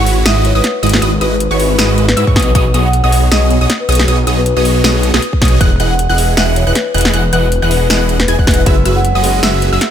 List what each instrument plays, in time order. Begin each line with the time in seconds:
Already playing: detuned saw bass G#1, synth pluck C#6
0.00 supersaw synth G#3 E4 F#4 B4 C#5
0.07 open hi-hat
0.26 detuned saw bass G#1, supersaw synth G#3 E4 F#4 B4 D#5, marimba E5, synth pluck D#6, snare, closed hi-hat
0.45 marimba C#5, closed hi-hat
0.55 detuned saw bass G#1, supersaw synth G#3 E4 F#4 B4 D#5, marimba B4, synth pluck D#6
0.64 marimba B4, snare, closed hi-hat
0.83 detuned saw bass G#1, supersaw synth G#3 E4 F#4 B4 D#5, synth pluck D#6, closed hi-hat
0.86 closed hi-hat
0.89 closed hi-hat
0.93 snare
1.02 detuned saw bass G#1, supersaw synth G#3 E4 F#4 B4 D#5, synth pluck D#6, closed hi-hat
1.21 detuned saw bass G#1, supersaw synth G#3 E4 F#4 B4 D#5, marimba B4, synth pluck D#6, closed hi-hat
1.40 closed hi-hat
1.51 detuned saw bass G#1, supersaw synth G#3 E4 F#4 B4 C#5, synth pluck C#6
1.59 marimba B4, open hi-hat
1.78 detuned saw bass G#1, supersaw synth G#3 E4 F#4 B4 D#5, synth pluck D#6, snare, closed hi-hat
1.98 closed hi-hat
2.08 marimba B4, snare
2.17 detuned saw bass G#2, supersaw synth G#3 E4 F#4 B4 E5, synth pluck E6, closed hi-hat
2.27 detuned saw bass G#2, supersaw synth G#3 E4 F#4 B4 C#5, synth pluck C#6, kick
2.36 detuned saw bass B1, supersaw synth B3 F#4 G#4 C#5 D#5, marimba B4, synth pluck D#6, kick, snare, closed hi-hat
2.40 closed hi-hat
2.43 closed hi-hat
2.47 marimba B4
2.55 detuned saw bass B1, supersaw synth B3 F#4 G#4 C#5 D#5, synth pluck D#6, kick, closed hi-hat
2.74 detuned saw bass B1, supersaw synth B3 F#4 G#4 C#5 D#5, synth pluck D#6, closed hi-hat
2.85 marimba F#5
2.93 closed hi-hat
3.04 detuned saw bass B1, supersaw synth B3 F#4 G#4 C#5 D#5, marimba F#5, synth pluck D#6
3.12 open hi-hat
3.31 detuned saw bass B1, supersaw synth B3 F#4 G#4 C#5 D#5, marimba D#5, synth pluck D#6, snare, closed hi-hat
3.51 closed hi-hat
3.61 detuned saw bass B1, supersaw synth B3 F#4 G#4 C#5 D#5, synth pluck D#6
3.70 snare, closed hi-hat
3.80 marimba B4
3.89 detuned saw bass B1, supersaw synth B3 F#4 G#4 C#5 D#5, synth pluck D#6, closed hi-hat
3.92 closed hi-hat
3.95 closed hi-hat
3.99 snare
4.08 detuned saw bass B1, supersaw synth B3 F#4 G#4 C#5 D#5, synth pluck D#6, closed hi-hat
4.27 detuned saw bass B1, supersaw synth B3 F#4 G#4 C#5 D#5, synth pluck D#6, closed hi-hat
4.37 marimba B4
4.46 marimba B4, closed hi-hat
4.56 detuned saw bass B1, supersaw synth B3 F#4 G#4 C#5 D#5, marimba B4, synth pluck D#6
4.65 open hi-hat
4.84 detuned saw bass B1, supersaw synth B3 F#4 G#4 C#5 D#5, synth pluck D#6, snare, closed hi-hat
5.03 closed hi-hat
5.14 detuned saw bass B1, supersaw synth B3 F#4 G#4 C#5 D#5, synth pluck D#6, snare
5.22 closed hi-hat
5.33 kick
5.42 detuned saw bass B1, supersaw synth B3 F#4 G#4 C#5 D#5, synth pluck D#6, kick, snare, closed hi-hat
5.45 closed hi-hat
5.48 closed hi-hat
5.61 detuned saw bass E1, supersaw synth E3 E4 G#4 D#5 F#5, synth pluck F#6, kick, closed hi-hat
5.80 detuned saw bass E1, supersaw synth E3 E4 G#4 D#5 F#5, synth pluck F#6, closed hi-hat
5.90 marimba F#5
5.99 closed hi-hat
6.09 detuned saw bass E1, supersaw synth E3 E4 G#4 D#5 F#5, marimba F#5, synth pluck F#6
6.18 open hi-hat
6.37 detuned saw bass E1, supersaw synth E3 E4 G#4 D#5 F#5, marimba E5, synth pluck F#6, snare, closed hi-hat
6.56 marimba C#5, closed hi-hat
6.67 detuned saw bass E1, supersaw synth E3 E4 G#4 D#5 F#5, marimba B4, synth pluck F#6
6.75 marimba B4, snare, closed hi-hat
6.94 detuned saw bass E1, supersaw synth E3 E4 G#4 D#5 F#5, synth pluck F#6, closed hi-hat
6.98 closed hi-hat
7.01 closed hi-hat
7.05 snare
7.13 detuned saw bass E1, supersaw synth E3 E4 G#4 D#5 F#5, synth pluck F#6, closed hi-hat
7.32 detuned saw bass E1, supersaw synth E3 E4 G#4 D#5 F#5, marimba B4, synth pluck F#6, closed hi-hat
7.52 closed hi-hat
7.62 detuned saw bass E1, supersaw synth E3 E4 G#4 D#5 F#5, synth pluck F#6
7.71 marimba B4, open hi-hat
7.90 detuned saw bass E1, supersaw synth E3 E4 G#4 D#5 F#5, synth pluck F#6, snare, closed hi-hat
8.09 closed hi-hat
8.19 marimba B4, snare
8.28 detuned saw bass E1, supersaw synth E3 E4 G#4 D#5 G#5, synth pluck G#6, closed hi-hat
8.39 detuned saw bass E1, supersaw synth E3 E4 G#4 D#5 F#5, synth pluck F#6, kick
8.47 detuned saw bass E1, supersaw synth E3 E4 G#4 D#5 F#5, marimba B4, synth pluck F#6, kick, snare, closed hi-hat
8.51 closed hi-hat
8.54 closed hi-hat
8.58 marimba B4
8.64 detuned saw bass F#1, supersaw synth F#3 F#4 G#4 B4 E5, grand piano G#3 B3 C#4 E4, synth pluck E6, kick, closed hi-hat
8.85 detuned saw bass F#1, supersaw synth F#3 F#4 G#4 B4 E5, synth pluck E6, closed hi-hat
8.96 marimba F#5
9.05 closed hi-hat
9.15 detuned saw bass F#1, supersaw synth F#3 F#4 G#4 B4 D#5, marimba F#5, synth pluck D#6
9.22 grand piano G#3 B3 C#4, open hi-hat
9.26 grand piano F#4
9.43 detuned saw bass F#1, supersaw synth F#3 F#4 G#4 B4 E5, marimba E5, synth pluck E6, snare, closed hi-hat
9.62 closed hi-hat
9.72 detuned saw bass F#1, supersaw synth F#3 F#4 G#4 B4 E5, synth pluck E6
9.81 snare, closed hi-hat